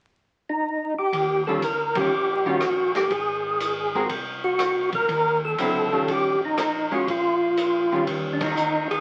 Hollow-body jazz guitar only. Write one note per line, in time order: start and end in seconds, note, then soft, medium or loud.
1.47 1.61 D#3 medium
1.47 1.61 G3 medium
1.47 1.61 C#4 medium
1.47 1.62 F4 medium
1.96 2.10 D#3 medium
1.96 2.11 G3 medium
1.96 2.11 C#4 medium
1.96 2.11 F4 medium
2.46 2.60 D#3 medium
2.46 2.60 G3 medium
2.46 2.60 C#4 medium
2.46 2.60 F4 medium
3.95 4.09 G#3 medium
3.95 4.09 C4 medium
3.95 4.09 F#4 medium
3.95 4.09 A#4 medium
5.59 5.89 D3 medium
5.59 5.89 F#3 medium
5.59 5.90 C4 medium
5.59 5.90 E4 medium
5.92 6.35 D#3 soft
5.92 6.35 G3 medium
5.92 6.35 C#4 medium
5.92 6.36 F4 medium
6.91 7.06 G#3 medium
6.91 7.06 C#4 medium
6.91 7.06 F4 medium
7.92 8.54 D#3 soft
7.92 8.54 G3 medium
7.92 8.54 C#4 medium
7.92 8.54 F4 medium